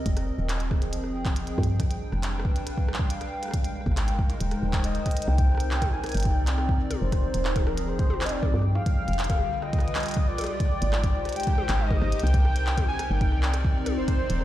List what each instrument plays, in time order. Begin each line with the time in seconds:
Already playing: analog synth pad C4 A#4 D#5
0.06 fm bass F1, analog synth pad F3, kick, closed hi-hat
0.17 cross-stick, closed hi-hat
0.38 fm bass D#1
0.49 cross-stick, clap, closed hi-hat
0.57 analog synth pad G#4, closed hi-hat
0.71 kick, cross-stick
0.82 analog synth pad G5, closed hi-hat
0.93 fm bass F1, closed hi-hat
1.04 cross-stick
1.25 kick, cross-stick, clap, closed hi-hat
1.36 closed hi-hat
1.47 closed hi-hat
1.58 fm bass G2, kick, cross-stick
1.63 closed hi-hat
1.80 analog synth pad G3, kick, cross-stick, closed hi-hat
1.90 analog synth pad D4, closed hi-hat
2.12 fm bass F1, cross-stick
2.23 analog synth pad B4, clap, closed hi-hat
2.40 cross-stick
2.45 kick
2.56 analog synth pad F5, closed hi-hat
2.67 cross-stick, closed hi-hat
2.78 kick
2.88 cross-stick
2.94 clap
2.99 kick
3.10 closed hi-hat
3.21 cross-stick, closed hi-hat
3.43 cross-stick, closed hi-hat
3.45 cross-stick
3.48 cross-stick
3.51 analog synth pad G#3, kick, cross-stick, closed hi-hat
3.64 closed hi-hat
3.75 analog synth pad D#4, cross-stick
3.81 cross-stick
3.86 fm bass G#1, kick, cross-stick
3.90 analog synth pad A#4, cross-stick
3.97 cross-stick, clap, closed hi-hat
4.08 closed hi-hat
4.19 kick
4.30 analog synth pad C5, cross-stick, closed hi-hat
4.41 fm bass D#1, closed hi-hat
4.51 cross-stick, closed hi-hat
4.62 fm bass D#1
4.73 kick, clap, closed hi-hat
4.84 soft synth lead D#5, cross-stick, closed hi-hat
4.95 closed hi-hat
5.06 kick, cross-stick, closed hi-hat
5.11 closed hi-hat
5.17 closed hi-hat
5.22 closed hi-hat
5.27 fm bass C2, analog synth pad C3, soft synth lead G5, cross-stick
5.38 kick, closed hi-hat
5.49 analog synth pad C4, cross-stick
5.52 cross-stick
5.55 cross-stick
5.57 cross-stick, closed hi-hat
5.71 clap
5.82 kick, cross-stick, closed hi-hat, high tom
5.91 analog synth pad D5, soft synth lead G#5
6.04 cross-stick, closed hi-hat
6.06 closed hi-hat
6.09 closed hi-hat
6.12 closed hi-hat
6.14 fm bass G1, soft synth lead G5, closed hi-hat
6.17 closed hi-hat
6.20 closed hi-hat
6.23 kick, closed hi-hat
6.25 closed hi-hat
6.31 cross-stick
6.36 fm bass C2
6.47 clap, closed hi-hat
6.58 cross-stick
6.69 kick
6.91 cross-stick, closed hi-hat, high tom
7.01 fm bass F1, analog synth pad F3, soft synth lead C5
7.12 kick, cross-stick, closed hi-hat
7.34 fm bass D#1, closed hi-hat
7.43 analog synth pad G#4, cross-stick, clap
7.56 kick, closed hi-hat, high tom
7.67 soft synth lead A#4, cross-stick
7.78 analog synth pad G5, closed hi-hat
7.88 fm bass F1, soft synth lead C5
7.99 kick, cross-stick, closed hi-hat
8.07 cross-stick, high tom
8.14 cross-stick
8.21 cross-stick, clap, closed hi-hat
8.24 soft synth lead D#5, closed hi-hat
8.26 closed hi-hat
8.29 soft synth lead D5, closed hi-hat
8.43 kick, high tom
8.54 fm bass G2, cross-stick
8.56 cross-stick
8.59 cross-stick
8.62 cross-stick
8.75 analog synth pad G3, soft synth lead F5, cross-stick
8.84 analog synth pad D3, kick, closed hi-hat
9.08 fm bass F1, closed hi-hat
9.13 closed hi-hat
9.19 clap, closed hi-hat
9.24 closed hi-hat
9.30 kick, cross-stick, closed hi-hat, high tom
9.32 high tom
9.35 high tom
9.38 analog synth pad F4, high tom
9.41 high tom
9.43 high tom
9.46 high tom
9.49 high tom
9.54 analog synth pad B4
9.62 soft synth lead D#5, cross-stick
9.73 kick, closed hi-hat
9.79 cross-stick, closed hi-hat
9.88 closed hi-hat
9.95 clap, closed hi-hat
9.98 closed hi-hat
10.00 closed hi-hat
10.03 closed hi-hat
10.06 closed hi-hat
10.09 closed hi-hat
10.11 closed hi-hat
10.14 kick, cross-stick, closed hi-hat
10.28 soft synth lead D5
10.38 closed hi-hat, high tom
10.41 cross-stick, closed hi-hat, high tom
10.46 soft synth lead D5, closed hi-hat, high tom
10.49 analog synth pad G#3, high tom
10.53 high tom
10.57 kick, closed hi-hat, high tom
10.66 cross-stick
10.81 fm bass G#1, analog synth pad D#4, closed hi-hat
10.87 analog synth pad G4
10.93 analog synth pad C5, cross-stick, clap
11.04 kick, closed hi-hat
11.25 analog synth pad A#4, cross-stick, closed hi-hat
11.29 closed hi-hat
11.33 soft synth lead G5, closed hi-hat
11.36 closed hi-hat
11.40 closed hi-hat
11.43 kick, cross-stick, closed hi-hat
11.47 cross-stick, closed hi-hat
11.53 cross-stick
11.55 cross-stick
11.58 cross-stick, high tom
11.61 cross-stick
11.63 cross-stick
11.66 fm bass G#1, cross-stick, clap, closed hi-hat
11.80 soft synth lead D#5, cross-stick
11.91 kick, high tom
12.01 fm bass G#1, cross-stick
12.12 closed hi-hat
12.20 fm bass C2, analog synth pad C3, soft synth lead G5, cross-stick, closed hi-hat
12.27 closed hi-hat
12.34 kick, closed hi-hat
12.45 cross-stick
12.56 closed hi-hat
12.66 analog synth pad C4, clap
12.78 kick, closed hi-hat, high tom
12.88 soft synth lead G#5
12.99 analog synth pad D5, cross-stick, closed hi-hat
13.10 fm bass G1, soft synth lead G5
13.21 kick, closed hi-hat
13.32 fm bass C2, cross-stick
13.43 clap
13.54 cross-stick, closed hi-hat
13.65 kick
13.86 cross-stick, closed hi-hat, high tom
13.97 fm bass F1, analog synth pad F3, soft synth lead C5
14.08 kick, cross-stick, closed hi-hat
14.30 fm bass D#1, closed hi-hat
14.41 cross-stick